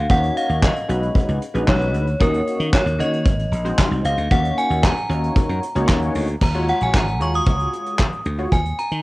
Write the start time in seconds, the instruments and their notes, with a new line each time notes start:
Already playing: synth bell F5
0.09 slap bass D#2, analog polysynth A#3 C#4 D#4 F#4 C5, synth bell F#5, kick, closed hi-hat
0.16 analog polysynth C#5
0.23 closed hi-hat
0.37 synth bell F5, closed hi-hat
0.49 slap bass D#2, closed hi-hat
0.62 synth bell D#5, kick, snare, clap
0.76 closed hi-hat
0.88 slap bass B1, analog polysynth G#3 C#4 D#4 F#4 B4, closed hi-hat
1.03 closed hi-hat
1.15 kick, closed hi-hat
1.28 slap bass C#2, closed hi-hat
1.42 closed hi-hat
1.54 slap bass A#1, analog polysynth G#3 C#4 D#4 F#4 B4, closed hi-hat
1.68 slap bass B1, synth bell C#5, kick, snare, clap
1.82 closed hi-hat
1.94 slap bass D2, closed hi-hat
2.07 closed hi-hat
2.20 slap bass D#2, analog polysynth A#3 C#4 D#4 F#4 C#5, synth bell A#4, kick, closed hi-hat
2.34 closed hi-hat
2.47 closed hi-hat
2.60 slap bass D#3, closed hi-hat
2.73 synth bell C#5, kick, snare, clap
2.86 slap bass D#2, closed hi-hat
2.99 slap bass D#3, analog polysynth A#3 C#4 D#4 F#4 C#5, synth bell D#5, closed hi-hat
3.13 closed hi-hat
3.26 slap bass G#1, kick, closed hi-hat
3.39 closed hi-hat
3.52 slap bass A#1, closed hi-hat
3.65 analog polysynth G#3 C4 D#4 F#4 C5, closed hi-hat
3.78 kick, snare, clap
3.91 slap bass C2, closed hi-hat
4.04 slap bass C#2, synth bell F5, closed hi-hat
4.18 slap bass D2, closed hi-hat
4.31 slap bass D#2, analog polysynth A#3 C#4 D#4 F#4 C#5, synth bell F#5, kick, closed hi-hat
4.45 closed hi-hat
4.58 synth bell G#5, closed hi-hat
4.70 slap bass D#2, closed hi-hat
4.84 synth bell A#5, kick, snare, clap
4.97 closed hi-hat
5.09 slap bass D#2, analog polysynth A#3 C#4 D#4 F#4 C#5, closed hi-hat
5.24 closed hi-hat
5.36 kick, closed hi-hat
5.49 slap bass F#2, closed hi-hat
5.63 closed hi-hat
5.75 slap bass C#2, analog polysynth A#3 C#4 D#4 F#4 C#5, closed hi-hat
5.89 slap bass D#2, kick, snare, clap
6.02 closed hi-hat
6.15 slap bass D2, open hi-hat
6.28 closed hi-hat
6.41 slap bass D#2, synth bell A#5, kick, crash
6.54 analog polysynth G#3 F4 F#4 C#5, closed hi-hat
6.68 synth bell F#5, closed hi-hat
6.80 slap bass A#1, synth bell G#5, closed hi-hat
6.94 slap bass G#1, synth bell A#5, kick, snare, clap
7.07 closed hi-hat
7.20 slap bass D#2, analog polysynth G#3 F4 F#4 C#5, synth bell C#6, closed hi-hat
7.34 synth bell D#6, closed hi-hat
7.46 slap bass C#2, kick, closed hi-hat
7.59 closed hi-hat
7.73 closed hi-hat
7.86 closed hi-hat
7.99 kick, snare, clap
8.13 closed hi-hat
8.25 slap bass D2, closed hi-hat
8.38 analog polysynth G#3 F4 F#4 C#5, closed hi-hat
8.52 slap bass D#2, synth bell G#5, kick, closed hi-hat
8.65 closed hi-hat
8.79 synth bell A#5, closed hi-hat
8.91 slap bass D#3, closed hi-hat